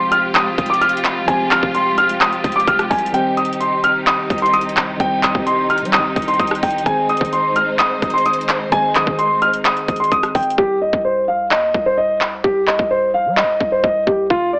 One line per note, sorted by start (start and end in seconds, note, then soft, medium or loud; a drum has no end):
0.00 0.55 F1 loud
0.00 1.23 F3 medium
0.00 1.23 G#3 medium
0.00 3.10 G#3 medium
0.00 1.24 C4 medium
0.00 3.10 F4 medium
0.00 1.25 G4 medium
0.00 6.82 G4 medium
0.00 1.25 C5 medium
0.12 0.31 F6 medium
0.12 closed hi-hat medium
0.35 0.68 D#6 medium
0.35 clap loud
0.35 closed hi-hat medium
0.58 1.25 F1 loud
0.58 kick loud
0.58 closed hi-hat medium
0.66 0.79 D6 medium
0.66 closed hi-hat medium
0.74 closed hi-hat medium
0.81 1.00 F6 medium
0.81 closed hi-hat medium
0.89 closed hi-hat medium
0.97 closed hi-hat medium
1.05 clap loud
1.05 closed hi-hat medium
1.25 1.53 F1 loud
1.25 3.09 F3 medium
1.25 3.09 G#3 medium
1.25 3.10 C4 medium
1.25 3.11 G4 medium
1.25 1.47 G#5 medium
1.25 kick loud
1.25 closed hi-hat medium
1.30 3.11 C5 medium
1.51 1.62 G1 loud
1.51 1.70 F6 medium
1.51 clap medium
1.51 closed hi-hat medium
1.63 2.41 F1 loud
1.63 kick loud
1.75 1.93 C6 medium
1.75 closed hi-hat medium
1.98 2.17 F6 medium
1.98 closed hi-hat soft
1.98 open hi-hat medium
2.09 closed hi-hat medium
2.21 2.54 D#6 medium
2.21 clap loud
2.21 closed hi-hat medium
2.33 closed hi-hat soft
2.44 2.67 F1 loud
2.44 kick loud
2.44 closed hi-hat medium
2.52 2.65 D6 medium
2.52 closed hi-hat medium
2.60 closed hi-hat medium
2.67 2.90 F1 loud
2.67 2.86 F6 medium
2.67 kick loud
2.67 closed hi-hat medium
2.79 cross-stick medium
2.79 closed hi-hat soft
2.90 3.13 C2 loud
2.90 3.09 G#5 medium
2.90 kick loud
2.90 closed hi-hat soft
2.90 open hi-hat medium
2.98 closed hi-hat medium
3.06 closed hi-hat medium
3.11 6.82 C3 medium
3.11 4.95 D#3 medium
3.11 4.96 G3 medium
3.11 4.96 C4 medium
3.11 10.54 D#4 medium
3.11 4.97 G4 medium
3.11 3.33 G5 medium
3.11 closed hi-hat medium
3.17 4.98 C5 medium
3.37 3.56 D#6 medium
3.37 closed hi-hat soft
3.45 closed hi-hat medium
3.53 closed hi-hat medium
3.60 3.79 C6 medium
3.60 closed hi-hat medium
3.84 4.03 F6 medium
3.84 closed hi-hat medium
4.07 4.40 D#6 medium
4.07 clap loud
4.07 closed hi-hat medium
4.30 4.97 C2 loud
4.30 kick loud
4.30 closed hi-hat medium
4.38 closed hi-hat medium
4.42 4.51 C6 medium
4.42 closed hi-hat medium
4.53 4.72 D#6 medium
4.53 closed hi-hat medium
4.61 closed hi-hat medium
4.69 closed hi-hat medium
4.77 clap loud
4.77 closed hi-hat medium
4.97 5.33 C2 loud
4.97 6.81 D#3 medium
4.97 6.82 G3 medium
4.97 6.82 C4 medium
4.97 6.83 G4 medium
4.97 5.19 G5 loud
4.97 kick loud
4.97 closed hi-hat medium
5.02 6.84 C5 medium
5.23 5.42 D#6 medium
5.23 clap medium
5.23 closed hi-hat medium
5.35 5.83 C2 loud
5.35 kick loud
5.46 5.65 C6 medium
5.46 closed hi-hat medium
5.70 5.89 F6 medium
5.70 closed hi-hat soft
5.78 6.00 G3 loud
5.78 closed hi-hat medium
5.85 closed hi-hat medium
5.93 6.26 D#6 medium
5.93 clap loud
5.93 closed hi-hat medium
5.99 6.15 C2 medium
6.16 6.39 C2 loud
6.16 kick medium
6.16 closed hi-hat medium
6.22 closed hi-hat medium
6.28 6.37 C6 medium
6.28 closed hi-hat medium
6.34 closed hi-hat soft
6.40 6.62 C2 loud
6.40 6.59 D#6 medium
6.40 kick loud
6.40 closed hi-hat medium
6.47 cross-stick medium
6.47 closed hi-hat medium
6.55 closed hi-hat medium
6.63 6.85 C2 loud
6.63 6.82 G5 medium
6.63 kick loud
6.63 closed hi-hat medium
6.63 open hi-hat medium
6.71 closed hi-hat medium
6.78 closed hi-hat medium
6.84 7.20 G#1 loud
6.84 8.67 D#3 medium
6.84 8.68 G#3 medium
6.84 10.54 G#3 medium
6.84 8.68 C4 medium
6.84 8.69 G#4 medium
6.84 10.54 C5 medium
6.84 7.05 G#5 loud
6.84 kick loud
6.84 closed hi-hat medium
6.89 8.70 C5 medium
7.09 7.28 D#6 medium
7.09 closed hi-hat soft
7.17 7.99 G#1 loud
7.17 kick loud
7.17 closed hi-hat medium
7.25 closed hi-hat medium
7.33 7.52 C6 medium
7.33 closed hi-hat medium
7.56 7.75 F6 medium
7.56 closed hi-hat medium
7.79 8.12 D#6 medium
7.79 clap loud
7.79 closed hi-hat medium
8.02 8.69 G#1 loud
8.02 kick loud
8.02 closed hi-hat medium
8.10 8.23 C6 medium
8.10 closed hi-hat medium
8.18 closed hi-hat medium
8.26 8.45 D#6 medium
8.26 closed hi-hat medium
8.33 closed hi-hat medium
8.41 closed hi-hat medium
8.49 clap loud
8.49 closed hi-hat medium
8.70 8.97 G#1 loud
8.70 10.53 D#3 medium
8.70 10.54 G#3 medium
8.70 10.54 C4 medium
8.70 10.55 G#4 medium
8.70 8.91 G#5 loud
8.70 kick loud
8.70 closed hi-hat medium
8.75 10.56 D#5 medium
8.95 9.06 B1 loud
8.95 9.14 D#6 medium
8.95 clap medium
8.95 closed hi-hat medium
9.07 9.85 G#1 loud
9.07 kick loud
9.18 9.37 C6 medium
9.18 closed hi-hat medium
9.42 9.61 F6 medium
9.42 closed hi-hat soft
9.42 open hi-hat medium
9.53 closed hi-hat medium
9.65 9.98 D#6 medium
9.65 clap loud
9.65 closed hi-hat medium
9.77 closed hi-hat soft
9.88 10.11 G#1 loud
9.88 kick medium
9.88 closed hi-hat medium
9.96 10.09 C6 medium
9.96 closed hi-hat medium
10.04 closed hi-hat medium
10.12 10.34 G#1 loud
10.12 10.31 D#6 medium
10.12 kick loud
10.12 closed hi-hat medium
10.23 cross-stick medium
10.23 closed hi-hat soft
10.35 10.57 G#1 loud
10.35 10.54 G5 medium
10.35 kick loud
10.35 closed hi-hat soft
10.35 open hi-hat medium
10.43 closed hi-hat medium
10.50 closed hi-hat medium
10.58 10.92 C2 loud
10.58 10.77 G4 loud
10.58 kick loud
10.81 11.00 D#5 medium
10.93 11.53 C2 loud
10.93 kick loud
11.05 11.24 C5 medium
11.28 11.47 F5 medium
11.51 11.73 D#2 loud
11.51 11.84 D#5 medium
11.51 clap loud
11.74 12.41 C2 loud
11.74 kick medium
11.86 11.96 C5 medium
11.97 12.16 D#5 medium
12.21 clap loud
12.44 12.78 C2 loud
12.44 12.63 G4 loud
12.44 kick loud
12.67 12.86 D#5 medium
12.67 clap medium
12.79 13.27 C2 loud
12.79 kick loud
12.91 13.10 C5 medium
13.14 13.33 F5 medium
13.26 13.45 G3 loud
13.37 13.70 D#5 medium
13.37 clap loud
13.43 13.60 C2 medium
13.60 13.83 C2 loud
13.60 kick medium
13.72 13.81 C5 medium
13.83 14.06 C2 loud
13.83 14.02 D#5 medium
13.83 kick loud
14.07 14.29 C2 loud
14.07 14.26 G4 medium
14.07 kick medium
14.30 14.60 F1 loud
14.30 14.49 F4 loud
14.30 kick loud
14.53 14.60 D5 medium